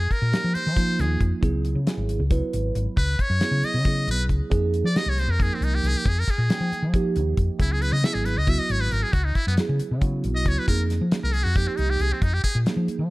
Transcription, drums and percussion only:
0.11 kick, closed hi-hat
0.33 snare, closed hi-hat
0.55 closed hi-hat
0.76 kick, snare, closed hi-hat
0.99 snare, closed hi-hat
1.21 kick, closed hi-hat
1.43 kick, closed hi-hat
1.65 closed hi-hat
1.87 snare, closed hi-hat
2.09 closed hi-hat
2.31 kick, closed hi-hat
2.53 closed hi-hat
2.75 closed hi-hat
2.97 kick, closed hi-hat
3.19 kick, closed hi-hat
3.41 snare, closed hi-hat
3.63 closed hi-hat
3.85 kick, closed hi-hat
4.07 closed hi-hat
4.29 kick, closed hi-hat
4.51 kick, closed hi-hat
4.74 closed hi-hat
4.96 snare, closed hi-hat
5.18 snare, closed hi-hat
5.40 kick, closed hi-hat
5.62 closed hi-hat
5.84 snare, closed hi-hat
6.06 kick, closed hi-hat
6.28 kick, closed hi-hat
6.50 snare, closed hi-hat
6.73 closed hi-hat
6.94 kick, closed hi-hat
7.16 closed hi-hat
7.37 kick, closed hi-hat
7.60 kick, closed hi-hat
7.82 closed hi-hat
8.04 snare, closed hi-hat
8.25 snare, closed hi-hat
8.47 kick, closed hi-hat
8.69 closed hi-hat
8.91 closed hi-hat
9.13 kick, closed hi-hat
9.35 kick, closed hi-hat
9.57 snare, closed hi-hat
9.80 closed hi-hat
10.01 kick, closed hi-hat
10.24 closed hi-hat
10.45 kick, snare, closed hi-hat
10.68 kick, closed hi-hat
10.90 snare, closed hi-hat
11.12 snare, closed hi-hat
11.34 closed hi-hat
11.56 kick, closed hi-hat
11.77 closed hi-hat
11.99 closed hi-hat
12.22 kick, closed hi-hat
12.44 kick, closed hi-hat
12.66 snare, closed hi-hat
12.88 closed hi-hat

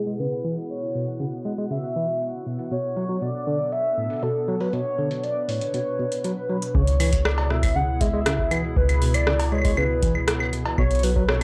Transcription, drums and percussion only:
0.07 closed hi-hat
0.19 closed hi-hat
0.57 open hi-hat
0.70 closed hi-hat
0.95 open hi-hat
1.08 closed hi-hat
1.20 closed hi-hat
1.45 open hi-hat
1.58 closed hi-hat
1.71 closed hi-hat
2.08 closed hi-hat
2.21 closed hi-hat
2.59 closed hi-hat
2.71 closed hi-hat
2.97 open hi-hat
3.22 closed hi-hat
3.72 closed hi-hat
4.10 closed hi-hat
4.13 closed hi-hat
4.16 closed hi-hat
4.19 closed hi-hat
4.23 closed hi-hat
4.60 open hi-hat
4.73 closed hi-hat
5.11 closed hi-hat
5.23 closed hi-hat
5.49 open hi-hat
5.61 closed hi-hat
5.74 closed hi-hat
6.12 closed hi-hat
6.24 closed hi-hat
6.62 closed hi-hat
6.75 kick
6.87 closed hi-hat
7.00 open hi-hat, claves
7.13 kick, closed hi-hat
7.25 cross-stick, claves
7.38 cowbell
7.50 cross-stick
7.63 kick, open hi-hat, claves
8.01 kick, closed hi-hat
8.26 cross-stick, closed hi-hat, claves
8.39 kick
8.51 closed hi-hat, claves
8.77 kick
8.89 closed hi-hat, claves
9.02 open hi-hat
9.14 closed hi-hat, claves
9.27 cross-stick
9.40 open hi-hat, cowbell
9.52 claves
9.55 claves
9.58 claves
9.62 kick, open hi-hat, claves
9.77 claves
10.03 kick, closed hi-hat
10.15 claves
10.28 cross-stick, closed hi-hat
10.40 claves
10.53 closed hi-hat
10.65 cowbell
10.78 kick, claves
10.91 closed hi-hat
10.95 closed hi-hat
10.99 closed hi-hat
11.03 open hi-hat
11.16 kick
11.29 cross-stick

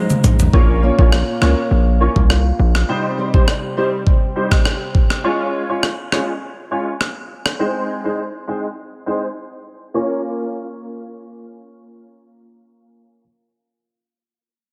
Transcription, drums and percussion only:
0.10 mid tom, shaker
0.24 closed hi-hat, mid tom, shaker
0.40 floor tom, shaker
0.53 kick
0.99 kick
1.12 cross-stick
1.42 cross-stick
2.16 kick
2.30 cross-stick
2.75 cross-stick
3.34 kick
3.48 cross-stick
4.07 kick
4.51 kick, cross-stick
4.65 cross-stick
4.95 kick
5.10 cross-stick
5.83 cross-stick
6.12 cross-stick
7.01 cross-stick
7.46 cross-stick

